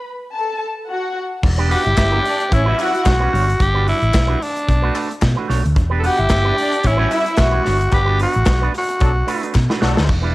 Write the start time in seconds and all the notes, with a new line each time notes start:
0.35 A4 A5
0.89 F#4 F#5
1.43 E1, muted clean electric guitar stroke, kick, crash
1.58 B3 D4 G4 B4
1.69 B3 D4 F#4 G4 B4 F#5, open hi-hat
1.84 G1 E4 E5, muted clean electric guitar stroke, closed hi-hat
1.96 G1, muted clean electric guitar stroke, kick, snare, clap, closed hi-hat
2.11 B3 D4 G4 B4
2.24 D4 D5, muted clean electric guitar stroke, open hi-hat
2.38 muted clean electric guitar stroke, closed hi-hat
2.50 A1 C#4 E4 C#5, muted clean electric guitar stroke, kick, closed hi-hat
2.65 G3 C#4 E4 F#4 B4 E5
2.76 G3 C#4 F#4 B4, clap, open hi-hat
2.80 E4 F#5
2.92 muted clean electric guitar stroke, closed hi-hat
3.03 B1, muted clean electric guitar stroke, kick, snare, clap, closed hi-hat
3.08 F#4
3.20 G3 C#4 F#4 B4
3.32 G1 G3 D4 F#4 C#5, open hi-hat
3.47 muted clean electric guitar stroke, closed hi-hat
3.59 G1 G4, muted clean electric guitar stroke, kick, closed hi-hat
3.74 G3 D4 F#4 B4
3.85 G3 D4 F#4 B4, open hi-hat
3.89 E4
4.00 A1, muted clean electric guitar stroke, closed hi-hat
4.13 B1, muted clean electric guitar stroke, kick, snare, clap, closed hi-hat
4.27 G3 D4 F#4 B4
4.40 D4, muted clean electric guitar stroke, open hi-hat
4.55 muted clean electric guitar stroke, closed hi-hat
4.68 B1, muted clean electric guitar stroke, kick, closed hi-hat
4.82 A3 D4 F#4 B4
4.94 A3 D4 F#4 B4, clap, open hi-hat
5.09 muted clean electric guitar stroke, closed hi-hat
5.21 B2, muted clean electric guitar stroke, kick, snare, clap, closed hi-hat
5.36 A3 D4 F#4 B4
5.48 B1 A3 D4 F#4 C#5, snare, open hi-hat
5.64 D2, muted clean electric guitar stroke, closed hi-hat
5.75 E1, muted clean electric guitar stroke, kick, closed hi-hat
5.90 B3 D4 G4 B4
6.00 B3 D4 A4, open hi-hat
6.04 F#4 G4 B4 F#5
6.17 G1 E4 E5, muted clean electric guitar stroke, closed hi-hat
6.29 G1, muted clean electric guitar stroke, kick, snare, clap, closed hi-hat
6.44 B3 D4 G4 B4
6.56 D4 D5, muted clean electric guitar stroke, open hi-hat
6.72 muted clean electric guitar stroke, closed hi-hat
6.83 A1 C#4 E4 C#5, muted clean electric guitar stroke, kick, closed hi-hat
6.97 G3 C#4 F#4 B4 C#5
7.09 G3 C#4 E4 F#4 B4 E5, clap, open hi-hat
7.14 E4
7.26 muted clean electric guitar stroke, closed hi-hat
7.37 B1, muted clean electric guitar stroke, kick, snare, clap, closed hi-hat
7.41 F#4
7.51 G3 C#4 F#4 B4
7.63 G1 B3 D4 F#4 C#5, snare, open hi-hat
7.79 muted clean electric guitar stroke, closed hi-hat
7.91 G1 G3 F#4 G4 B4, muted clean electric guitar stroke, kick, closed hi-hat
8.05 B3 D4 F#4 B4
8.19 B3 D4 F#4 B4, open hi-hat
8.33 A1, muted clean electric guitar stroke, closed hi-hat
8.45 B1, muted clean electric guitar stroke, kick, snare, clap, closed hi-hat
8.62 B3 D4 F#4 B4
8.74 muted clean electric guitar stroke, open hi-hat
8.78 F#4
8.89 muted clean electric guitar stroke, closed hi-hat
9.00 B1 F#3 D4 A4, muted clean electric guitar stroke, kick, closed hi-hat
9.15 muted clean electric guitar stroke
9.27 A3 D4 F#4 B4, clap, open hi-hat
9.42 A3 D4 F#4 B4, closed hi-hat
9.54 B2, muted clean electric guitar stroke, kick, snare, clap
9.70 A3 D4 F#4 B4, snare
9.80 B1 F#3 A3 D4 F#4 A4 C#5, snare
9.97 D2, muted clean electric guitar stroke, snare
10.08 E1, muted clean electric guitar stroke, kick, crash
10.22 G3 D4 E4 B4